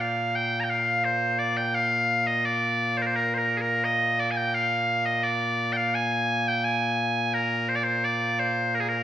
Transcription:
Already playing: A#2 A#3
0.00 F5
0.35 G5
0.60 G5 A#5
0.70 F5
1.05 C5
1.39 D5
1.57 G5
1.75 F5
2.27 D#5
2.45 D5
2.97 C5
3.02 A#4
3.06 C5
3.15 A#4
3.34 A#4 C5
3.57 G#4
3.61 A#4
3.84 D#5
4.19 D5
4.31 G#5
4.37 G5
4.54 F5
5.06 D#5
5.23 D5
5.73 F5 G5
5.94 G#5
6.48 G5
6.64 G#5
7.34 A#4
7.69 C5
7.76 D5
7.84 C5
8.05 D5
8.39 C5
8.75 A#4
8.80 G#4
8.89 A#4

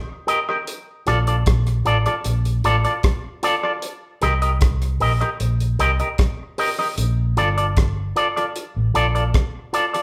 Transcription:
0.27 G4 A#4 D#5, closed hi-hat
0.49 G4 A#4 D#5
0.67 closed hi-hat
1.07 A#1 F4 A4 D5, cross-stick, closed hi-hat
1.27 F4 A4 D5, closed hi-hat
1.46 A#1, kick, cross-stick, closed hi-hat
1.67 closed hi-hat
1.85 A1 F4 A4 D5, closed hi-hat
2.06 F4 A4 D5, closed hi-hat
2.25 A#1, closed hi-hat
2.45 closed hi-hat
2.64 A1 F4 A4 D5, closed hi-hat
2.85 F4 A4 D5, closed hi-hat
3.03 kick, cross-stick, closed hi-hat
3.43 F4 A4 D5, closed hi-hat
3.63 F4 A4 D5
3.82 closed hi-hat
4.22 C2 G4 A#4 D#5, cross-stick, closed hi-hat
4.42 G4 A#4 D#5, closed hi-hat
4.61 C2, kick, cross-stick, closed hi-hat
4.82 closed hi-hat
5.00 A#1 G4 A#4 D#5, open hi-hat
5.21 G4 A#4 D#5, closed hi-hat
5.40 A#1, closed hi-hat
5.60 closed hi-hat
5.79 C2 G4 A#4 D#5, closed hi-hat
6.00 G4 A#4 D#5, closed hi-hat
6.18 kick, cross-stick, closed hi-hat
6.58 G4 A#4 D#5, open hi-hat
6.79 G4 A#4 D#5
6.98 A#1, closed hi-hat
7.37 G1 F4 A4 D5, closed hi-hat
7.58 F4 A4 D5, closed hi-hat
7.77 kick, cross-stick, closed hi-hat
8.16 F4 A4 D5, closed hi-hat
8.36 F4 A4 D5, closed hi-hat
8.56 closed hi-hat
8.76 A1
8.94 A#1 F4 A4 D5, closed hi-hat
9.15 F4 A4 D5, closed hi-hat
9.34 kick, cross-stick, closed hi-hat
9.73 F4 A4 D5, closed hi-hat
9.94 F4 A4 D5, closed hi-hat

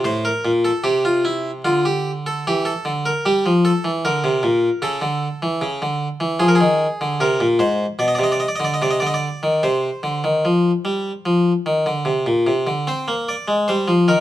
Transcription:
0.04 A2 C5
0.25 A#4
0.45 A#2
0.65 A4
0.84 C3 G4
1.05 F4
1.25 E4
1.65 D3 F4
1.85 G4
2.26 A4
2.47 E3 G4
2.65 A4
2.85 D3
3.06 A#4
3.26 G3 G4
3.46 F3
3.65 A4
3.84 E3
4.05 D3 A#4
4.24 C3
4.43 A#2
4.82 C#3 A4
5.02 D3
5.42 E3
5.61 C#3
5.82 D3
6.20 E3
6.40 F3 G#4
6.48 A#4
6.55 G#4
6.61 D#3
7.01 D3
7.20 C3 A#4
7.40 A#2
7.59 G#2 C5
7.99 B2 D5
8.08 D#5
8.15 C3 D5
8.24 D#5
8.32 D5
8.40 D#5
8.48 D5
8.56 D#5
8.60 D3
8.64 D5
8.74 D#5
8.82 C3 D5
8.91 D#5
9.00 D3 D5
9.07 D#5
9.14 D5
9.43 D#3
9.63 C3 C5
10.03 D3
10.24 D#3
10.45 F3
10.85 G3
11.26 F3
11.66 D#3
11.86 D3
12.05 C3
12.26 A#2
12.47 C3
12.67 D3
12.87 C4 C5
13.08 A#3
13.29 D5
13.48 G#3
13.68 G3 C5
13.88 F3
14.08 D#3 A#4

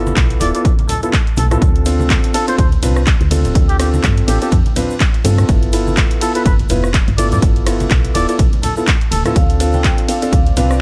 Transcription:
Already playing: G1 B3 E4 F4 A4
0.06 high conga, shaker
0.17 B1, kick, clap, closed hi-hat, shaker
0.30 closed hi-hat
0.41 D1 B3 E4 F4 A4 D5, open hi-hat, shaker
0.54 B3 E4 F4 A4 D5, closed hi-hat, shaker
0.65 kick, closed hi-hat, shaker
0.79 closed hi-hat, high conga
0.89 A4, open hi-hat, low conga, shaker
1.03 B3 E4 F4 A4, closed hi-hat, shaker
1.13 kick, clap, closed hi-hat, shaker
1.27 closed hi-hat
1.37 B1 A4, open hi-hat, high conga, shaker
1.51 B3 E4 F4 A4, cross-stick, closed hi-hat, low conga, shaker
1.62 D2 C4 D4 F4 A4, kick, closed hi-hat, shaker
1.76 closed hi-hat
1.85 C4 D4 F4 A4, open hi-hat, ride, shaker
2.00 high conga, shaker
2.10 kick, clap, closed hi-hat, shaker
2.24 closed hi-hat
2.34 C4 D4 F4 A4, open hi-hat, ride, shaker
2.48 C4 D4 F4 A4 C5, closed hi-hat, shaker
2.58 D2 C5, kick, closed hi-hat, shaker
2.72 closed hi-hat, high conga
2.83 C2 C4 D4 F4 B4, open hi-hat, ride, low conga, shaker
2.96 cross-stick, shaker
3.07 kick, clap, closed hi-hat, shaker
3.21 D2, closed hi-hat
3.31 C4 D4 F4 A4, open hi-hat, ride, high conga, shaker
3.45 D1, closed hi-hat, low conga, shaker
3.55 D2 C4 D4 F4 A4, kick, closed hi-hat, shaker
3.69 G4, closed hi-hat
3.79 C4 D4 F4 G4 A4, cross-stick, open hi-hat, ride, shaker
3.94 high conga, shaker
4.04 G2, kick, clap, closed hi-hat, shaker
4.18 closed hi-hat
4.28 A1 C4 D4 F4 G4 A4, open hi-hat, ride, shaker
4.41 C4 D4 F4 G4 A4, closed hi-hat, shaker
4.52 F2, kick, closed hi-hat, shaker
4.66 closed hi-hat, high conga
4.76 C4 D4 F4 B4, open hi-hat, ride, low conga, shaker
4.90 shaker
5.00 kick, clap, closed hi-hat, shaker
5.14 closed hi-hat
5.24 G2 C4 D4 F4 A4, open hi-hat, ride, high conga, shaker
5.38 cross-stick, closed hi-hat, low conga, shaker
5.49 G1 B3 E4 F4 A4, kick, closed hi-hat, shaker
5.63 closed hi-hat
5.73 B3 E4 F4 A4, open hi-hat, ride, shaker
5.87 high conga, shaker
5.97 kick, clap, closed hi-hat, shaker
6.11 closed hi-hat
6.21 B3 E4 F4 A4, open hi-hat, ride, shaker
6.35 B3 E4 F4 A4 B4, closed hi-hat, shaker
6.46 G1 B4, kick, closed hi-hat, shaker
6.59 closed hi-hat, high conga
6.69 F1 B3 E4 F4 B4, open hi-hat, ride, low conga, shaker
6.84 cross-stick, shaker
6.94 kick, clap, closed hi-hat, shaker
7.08 G1, closed hi-hat
7.18 B3 E4 F4 A4 D5, open hi-hat, ride, high conga, shaker
7.32 G2 D5, closed hi-hat, low conga, shaker
7.42 G1 B3 E4 F4 A4, kick, closed hi-hat, shaker
7.56 closed hi-hat
7.66 B3 E4 F4 A4, cross-stick, open hi-hat, ride, shaker
7.80 closed hi-hat, high conga, shaker
7.90 B1, kick, clap, closed hi-hat, shaker
8.05 closed hi-hat
8.15 D1 B3 E4 F4 A4 D5, open hi-hat, ride, shaker
8.29 B3 E4 F4 A4 D5, closed hi-hat, shaker
8.39 B1, kick, closed hi-hat, shaker
8.53 closed hi-hat, high conga
8.63 A4, open hi-hat, ride, low conga, shaker
8.77 B3 E4 F4 A4, shaker
8.87 kick, clap, closed hi-hat, shaker
9.01 closed hi-hat
9.11 D1 A4, open hi-hat, ride, high conga, shaker
9.25 B3 E4 F4 A4, cross-stick, closed hi-hat, low conga, shaker
9.36 D2 C4 D4 F4 D5 F5, kick, closed hi-hat, shaker
9.50 closed hi-hat
9.60 C4 D4 F4 A4, open hi-hat, ride, shaker
9.73 G5, high conga, shaker
9.84 kick, clap, closed hi-hat, shaker
9.98 closed hi-hat
10.08 C4 D4 F4 A4 F5, open hi-hat, ride, shaker
10.22 C4 D4 F4 A4, closed hi-hat, shaker
10.32 D2, kick, closed hi-hat, shaker
10.46 closed hi-hat, high conga
10.57 C2 C4 D4 F4 B4 F5, open hi-hat, ride, low conga, shaker
10.70 cross-stick, shaker

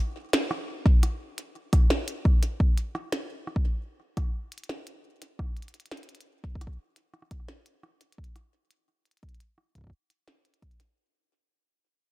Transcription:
0.33 snare, closed hi-hat
0.51 cross-stick
0.86 kick
1.03 cross-stick, closed hi-hat
1.38 closed hi-hat
1.73 kick, cross-stick, closed hi-hat
1.90 snare
2.08 closed hi-hat
2.25 kick, cross-stick
2.43 closed hi-hat
2.60 kick
2.78 closed hi-hat
2.95 cross-stick
3.12 snare, closed hi-hat
3.47 cross-stick
3.56 kick
4.17 kick, cross-stick, closed hi-hat
4.52 closed hi-hat
4.58 closed hi-hat
4.64 closed hi-hat
4.69 cross-stick, snare
4.87 closed hi-hat
5.22 closed hi-hat
5.39 kick, cross-stick
5.57 closed hi-hat
5.62 closed hi-hat
5.68 closed hi-hat
5.74 closed hi-hat
5.80 closed hi-hat
5.86 closed hi-hat
5.91 cross-stick, snare, closed hi-hat
5.97 closed hi-hat
6.03 closed hi-hat
6.09 closed hi-hat
6.15 closed hi-hat
6.21 closed hi-hat
6.44 kick
6.55 kick
6.61 cross-stick, closed hi-hat
6.67 kick
6.96 closed hi-hat
7.14 cross-stick
7.22 cross-stick
7.31 kick, cross-stick, closed hi-hat
7.40 cross-stick
7.48 snare
7.66 closed hi-hat
7.83 cross-stick
8.01 closed hi-hat
8.12 closed hi-hat
8.18 kick
8.24 closed hi-hat
8.36 cross-stick, closed hi-hat
8.71 closed hi-hat
9.05 closed hi-hat
9.11 closed hi-hat
9.17 closed hi-hat
9.23 kick, closed hi-hat
9.29 closed hi-hat
9.35 closed hi-hat
9.40 closed hi-hat
9.58 cross-stick
9.75 kick, closed hi-hat
9.78 kick
9.81 kick
9.84 kick
9.87 kick
9.90 kick
10.10 closed hi-hat
10.28 cross-stick, snare
10.45 closed hi-hat
10.54 closed hi-hat
10.62 kick, closed hi-hat
10.71 closed hi-hat
10.80 closed hi-hat

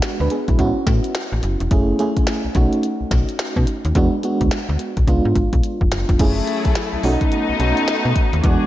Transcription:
Already playing: G#3 B3 D4 F#4
0.02 F#4, snare, closed hi-hat
0.20 D2 D4 B4
0.30 B3 G#4, closed hi-hat
0.48 B1 G#3 E4, kick, closed hi-hat
0.59 A1 B3 C#4 E4 F#4, kick, closed hi-hat
0.87 A2, kick, snare, closed hi-hat
1.04 closed hi-hat
1.15 snare, closed hi-hat
1.32 A1
1.43 F#1, closed hi-hat
1.60 E1, closed hi-hat
1.71 F#1 A3 C#4 E4 G#4, kick, closed hi-hat
1.99 A3 C#4 E4 G#4, closed hi-hat
2.17 B1, kick, closed hi-hat
2.27 snare, closed hi-hat
2.45 B1
2.55 B1 A3 C#4 D#4 F#4, kick, closed hi-hat
2.73 closed hi-hat
2.83 closed hi-hat
3.01 B1
3.11 B1, kick, snare, closed hi-hat
3.29 closed hi-hat
3.39 snare, closed hi-hat
3.56 B2, kick
3.67 closed hi-hat
3.85 D#2, closed hi-hat
3.95 E2 G#3 B3 D4 F#4, kick, closed hi-hat
4.23 G#3 B3 D4 F#4, closed hi-hat
4.41 D2, kick, closed hi-hat
4.51 snare, closed hi-hat
4.69 D2
4.79 closed hi-hat
4.97 B1, kick, closed hi-hat
5.07 C#2 G#3 B3 D4 F4, kick, closed hi-hat
5.25 G#2
5.35 G#1, kick, closed hi-hat
5.53 B1, kick, closed hi-hat
5.64 closed hi-hat
5.81 F1, kick
5.92 F#1, snare, closed hi-hat
6.09 F1, kick, closed hi-hat
6.19 F#1 F#3 A3 C#4 E4 G#4, kick, closed hi-hat, crash
6.47 closed hi-hat
6.65 B1, kick, closed hi-hat
6.75 snare, closed hi-hat
6.93 B1
7.03 B1 A3 B3 C#4 D#4 F#4, open hi-hat
7.21 kick, closed hi-hat
7.32 closed hi-hat
7.49 B1
7.60 B1 A3 C#4 D#4 F#4, closed hi-hat
7.77 closed hi-hat
7.88 snare, closed hi-hat
8.05 B2
8.16 kick, closed hi-hat
8.33 D#2, closed hi-hat
8.44 E2 E3 G#3 B3 D4 F#4 G#4, kick, closed hi-hat

